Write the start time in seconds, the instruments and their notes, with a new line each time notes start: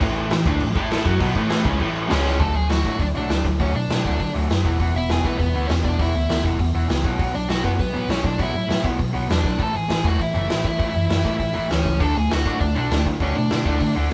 0.01 picked electric bass A1, overdriven electric guitar A2 E3 A3, kick, crash
0.16 crash
0.30 picked electric bass A1, overdriven electric guitar A2 E3, snare, crash
0.45 picked electric bass D2, overdriven electric guitar D3 A3 D4, kick, crash
0.60 picked electric bass A1, overdriven electric guitar A2 E3, crash
0.75 picked electric bass A2, overdriven electric guitar A3 E4 A4, kick, crash
0.91 snare, crash
1.06 picked electric bass F#2, overdriven electric guitar F#3 C#4 F#4, kick, crash
1.20 picked electric bass B1, overdriven electric guitar B2 F#3 B3, kick, crash
1.35 picked electric bass A1, overdriven electric guitar A2 E3 A3, kick, crash
1.50 snare, crash
1.64 picked electric bass C#2, overdriven electric guitar C#3 G#3 C#4, kick, crash
1.80 picked electric bass A1, overdriven electric guitar A2 E3 A3, crash
1.95 crash
2.09 picked electric bass C#2, overdriven electric guitar C#3 G#3 C#4, lead electric guitar C#4 C#5, snare, crash
2.26 snare
2.39 picked electric bass D2, overdriven electric guitar D3 F#3 A3, lead electric guitar A4 A5, kick, open hi-hat
2.55 picked electric bass D2, overdriven electric guitar D3 F#3, lead electric guitar G#4 G#5, open hi-hat
2.69 picked electric bass D2, overdriven electric guitar D3 F#3, lead electric guitar F#4 F#5, snare, open hi-hat
2.84 picked electric bass A2, overdriven electric guitar D3 F#3 A3, kick, open hi-hat
3.00 picked electric bass D2, overdriven electric guitar D3 F#3, lead electric guitar D4 D5, kick, open hi-hat
3.15 picked electric bass B1, overdriven electric guitar D3 F#3 A3, lead electric guitar D4 D5, open hi-hat
3.29 picked electric bass D2, overdriven electric guitar D3 F#3, snare, open hi-hat
3.44 picked electric bass D2, overdriven electric guitar D3 F#3, kick, open hi-hat
3.60 picked electric bass D2, overdriven electric guitar D3 F#3 A3, lead electric guitar C#4 C#5, kick, open hi-hat
3.74 picked electric bass B2, overdriven electric guitar D3 F#3, lead electric guitar D4 D5, open hi-hat
3.89 picked electric bass B2, overdriven electric guitar D3 F#3, snare, open hi-hat
4.04 picked electric bass D2, overdriven electric guitar D3 F#3 A3, kick, open hi-hat
4.20 picked electric bass D3, overdriven electric guitar D3 F#3, kick, open hi-hat
4.34 picked electric bass D2, overdriven electric guitar D3 F#3 A3, open hi-hat
4.50 picked electric bass F#2, overdriven electric guitar D3 F#3, snare, open hi-hat
4.65 picked electric bass E1, overdriven electric guitar E3 B3 E4, kick, open hi-hat
4.79 picked electric bass E1, overdriven electric guitar E3 B3 E4, kick, open hi-hat
4.94 picked electric bass E1, overdriven electric guitar E3 B3, lead electric guitar E4 E5, open hi-hat
5.09 picked electric bass E1, overdriven electric guitar E3 B3, lead electric guitar G#4 G#5, snare, open hi-hat
5.24 picked electric bass B1, overdriven electric guitar E3 B3 E4, lead electric guitar B3 B4, kick, open hi-hat
5.39 picked electric bass E1, overdriven electric guitar E3 B3, lead electric guitar B3 B4, kick, open hi-hat
5.54 picked electric bass D2, overdriven electric guitar E3 B3 E4, open hi-hat
5.68 picked electric bass E1, overdriven electric guitar E3 B3, lead electric guitar C#4 C#5, snare, open hi-hat
5.84 picked electric bass E1, overdriven electric guitar E3 B3, lead electric guitar D4 D5, kick, open hi-hat
5.99 picked electric bass E1, overdriven electric guitar E3 B3 E4, lead electric guitar E4 E5, kick, open hi-hat
6.14 picked electric bass D2, overdriven electric guitar E3 B3, open hi-hat
6.29 picked electric bass D2, overdriven electric guitar E3 B3, snare, open hi-hat
6.44 picked electric bass E1, overdriven electric guitar E3 B3 E4, kick, open hi-hat
6.59 picked electric bass E2, overdriven electric guitar E3 B3, kick, open hi-hat
6.73 picked electric bass E1, overdriven electric guitar E3 B3 E4, open hi-hat
6.89 picked electric bass C#2, overdriven electric guitar E3 B3, snare, open hi-hat
7.04 picked electric bass B1, overdriven electric guitar B2 F#3 B3, kick, open hi-hat
7.19 picked electric bass B1, overdriven electric guitar B2 F#3 B3, kick, open hi-hat
7.34 picked electric bass B1, overdriven electric guitar B2 F#3, lead electric guitar D4 D5, open hi-hat
7.49 picked electric bass B1, overdriven electric guitar B2 F#3, lead electric guitar F#4 F#5, snare, open hi-hat
7.63 picked electric bass F#2, overdriven electric guitar B2 F#3 B3, lead electric guitar B3 B4, kick, open hi-hat
7.79 picked electric bass B1, overdriven electric guitar B2 F#3, lead electric guitar B3 B4, kick, open hi-hat
7.93 picked electric bass A1, overdriven electric guitar B2 F#3 B3, open hi-hat
8.09 picked electric bass B1, overdriven electric guitar B2 F#3, lead electric guitar C#4 C#5, snare, open hi-hat
8.24 picked electric bass B1, overdriven electric guitar B2 F#3, lead electric guitar D4 D5, kick, open hi-hat
8.38 picked electric bass B1, overdriven electric guitar B2 F#3 B3, lead electric guitar E4, kick, open hi-hat
8.42 lead electric guitar E5
8.53 picked electric bass A2, overdriven electric guitar B2 F#3, open hi-hat
8.69 picked electric bass A2, overdriven electric guitar B2 F#3, snare, open hi-hat
8.84 picked electric bass B1, overdriven electric guitar B2 F#3 B3, kick, open hi-hat
8.98 overdriven electric guitar B2 F#3, picked electric bass B2, kick, open hi-hat
9.13 picked electric bass B1, overdriven electric guitar B2 F#3 B3, open hi-hat
9.28 picked electric bass E2, overdriven electric guitar B2 F#3, lead electric guitar D4 D5, snare, open hi-hat
9.44 picked electric bass B1, overdriven electric guitar B2 F#3, kick, open hi-hat
9.58 picked electric bass A1, overdriven electric guitar A2 E3 A3, lead electric guitar A4, kick, open hi-hat
9.63 lead electric guitar A5
9.74 picked electric bass A1, overdriven electric guitar A2 E3, lead electric guitar G#4 G#5, open hi-hat
9.89 picked electric bass A1, overdriven electric guitar A2 E3, snare, open hi-hat
10.04 picked electric bass E2, overdriven electric guitar A2 E3 A3, lead electric guitar F#4 F#5, kick, open hi-hat
10.19 picked electric bass A1, overdriven electric guitar A2 E3, lead electric guitar E4 E5, kick, open hi-hat
10.34 picked electric bass F#1, overdriven electric guitar A2 E3 A3, open hi-hat
10.49 picked electric bass A1, overdriven electric guitar A2 E3, snare, open hi-hat
10.64 picked electric bass A1, overdriven electric guitar A2 E3, kick, open hi-hat
10.79 picked electric bass A1, overdriven electric guitar A2 E3 A3, kick, open hi-hat
10.94 picked electric bass F#2, overdriven electric guitar A2 E3, open hi-hat
11.09 picked electric bass F#2, overdriven electric guitar A2 E3, snare, open hi-hat
11.24 picked electric bass A1, overdriven electric guitar A2 E3 A3, kick, open hi-hat
11.39 overdriven electric guitar A2 E3, picked electric bass A2, kick, open hi-hat
11.53 picked electric bass A1, overdriven electric guitar A2 E3 A3, open hi-hat
11.69 picked electric bass D2, overdriven electric guitar A2 E3, lead electric guitar C#4 C#5, snare, open hi-hat
11.85 picked electric bass C#2, overdriven electric guitar A2 E3, kick, open hi-hat
12.00 picked electric bass D2, overdriven electric guitar D3 A3 D4, lead electric guitar A4, kick, open hi-hat
12.04 lead electric guitar A5
12.15 picked electric bass D2, overdriven electric guitar D3 A3, lead electric guitar G#4 G#5, open hi-hat
12.31 picked electric bass D2, overdriven electric guitar D3 A3, lead electric guitar F#4 F#5, snare, open hi-hat
12.45 picked electric bass A2, overdriven electric guitar D3 A3 D4, kick, open hi-hat
12.60 picked electric bass D2, overdriven electric guitar D3 A3, lead electric guitar D4 D5, kick, open hi-hat
12.75 picked electric bass B1, overdriven electric guitar D3 A3 D4, lead electric guitar D4 D5, open hi-hat
12.91 picked electric bass D2, overdriven electric guitar D3 A3, snare, open hi-hat
13.05 picked electric bass D2, overdriven electric guitar D3 A3, kick, open hi-hat
13.20 picked electric bass D2, overdriven electric guitar D3 A3 D4, lead electric guitar C#4 C#5, kick, open hi-hat
13.35 picked electric bass B2, overdriven electric guitar D3 A3, lead electric guitar D4 D5, open hi-hat
13.50 picked electric bass B2, overdriven electric guitar D3 A3, snare, open hi-hat
13.65 picked electric bass D2, overdriven electric guitar D3 A3 D4, kick, open hi-hat
13.80 picked electric bass D3, overdriven electric guitar D3 A3, kick, open hi-hat
13.95 picked electric bass D2, overdriven electric guitar D3 A3 D4, open hi-hat
14.10 overdriven electric guitar D3 A3